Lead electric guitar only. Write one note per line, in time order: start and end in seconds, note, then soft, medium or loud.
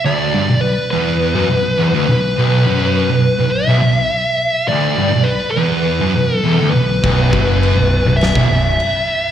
0.06 0.60 D5 loud
0.61 0.90 B4 loud
0.91 2.04 B4 loud
2.06 3.57 B4 loud
3.51 4.68 E5 loud
4.68 5.29 D5 loud
5.24 5.50 B4 medium
5.51 6.36 B4 medium
6.36 6.70 A4 medium
6.71 8.14 B4 medium
8.17 9.32 E5 loud